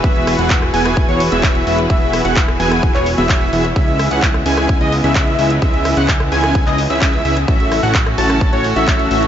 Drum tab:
HH |xxoxxxoxxxoxxxox|xxoxxxoxxxoxxxox|xxoxxxo-xxoxxxox|xxoxxxoxxxoxxxox|
CP |----x-------x---|----x----x--x---|----x-------x---|----x----x--x---|
SD |--r--r-r--------|--r--r-r--------|--r--r-r--------|--r--r-r--------|
BD |o---o---o---o---|o---o---o---o---|o---o---o---o---|o---o---o---o---|

HH |xxoxxxoxxxoxxxox|
CP |----x-------x---|
SD |--r--r-r--------|
BD |o---o---o---o---|